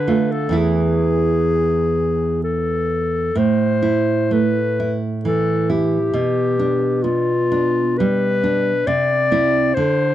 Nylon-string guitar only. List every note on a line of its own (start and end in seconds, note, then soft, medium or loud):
0.00 0.50 D3 soft
0.08 0.52 A3 soft
0.08 0.52 F4 soft
0.49 3.29 E2 soft
0.49 3.30 E3 soft
0.49 3.31 E4 soft
3.35 6.10 A2 soft
3.82 4.59 E4 soft
4.31 5.06 A3 soft
4.80 5.53 E4 soft
5.25 5.97 E3 soft
5.70 6.15 E4 soft
6.14 8.83 B2 soft
6.59 7.32 D4 soft
7.04 7.80 B3 soft
7.52 8.27 D4 soft
8.00 8.71 G3 soft
8.44 8.87 D4 soft
8.87 9.72 C3 soft
9.31 9.72 C4 soft
9.31 9.72 E4 soft
9.77 10.14 D3 soft